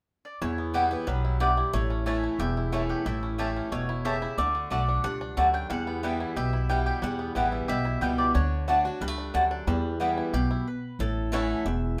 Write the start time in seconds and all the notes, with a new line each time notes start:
0.25 D5
0.41 E2 E4 C#5
0.58 B3
0.74 E3 G3 B3 E4 G4 B4 G5
0.91 B3 E4
1.07 B1 F#3 G3 B4
1.25 E4
1.40 G2 B3 E4 G4 B4 D5 G5
1.57 E4
1.73 A1 A2 A3 C#5
1.90 C#4
2.06 E3 A3 C#4 E4 C#5 A5
2.24 E4
2.39 E1 E2 G4 E5
2.57 E4
2.72 E3 A3 C#4 E4 C#5 A5
2.89 G4 F#5
3.06 A1 A2 E4 E5
3.23 C#4
3.38 E3 A3 C#4 E4 G4 C#5 A5
3.56 C#4
3.72 E1 B2 A3 C#5
3.89 E4
4.05 C#3 A3 E4 G4 C#5 E5 A5
4.22 E4
4.38 D2 D3 A3 D5
4.55 D4
4.70 B1 D3 A3 D4 F#4 D5 A5
4.89 D4
5.04 C#2 G2 D4 F#5
5.21 D4
5.37 D2 F#2 A3 F#4 D5 A5
5.54 D4 G5
5.70 E2 G3 F#5
5.87 B3
6.03 E3 G3 B3 E4 B4 G5
6.20 E4
6.36 B1 B2 G4 E5
6.53 E4
6.69 E3 G3 B3 E4 B4 G5
6.86 G4 G5
7.02 E2 G3 F#5
7.19 B3
7.35 A1 E3 G3 B3 E4 B4 G5
7.52 E4
7.68 B1 B2 G4 E5
7.85 E4
8.01 C#2 E3 G3 B3 E4 B4 G5
8.18 G4 D5
8.34 D2 D3 D4 C#5
8.68 D3 A3 D4 F#4 D5 A5
8.85 D4 F#4
9.01 C#2 G2 G3 B4
9.08 A3
9.18 D4
9.34 D2 F#2 A3 D4 F#4 A4 D5 A5
9.51 D4
9.67 E2 G3 B4
10.00 E3 G3 B3 E4 B4 G5
10.18 E4
10.33 B1 B2 G4
10.51 E4
10.68 B4
10.99 A1 A2 A4
11.32 E3 A3 C#4 E4 C#5 F#5 A5
11.65 E1 E2 E5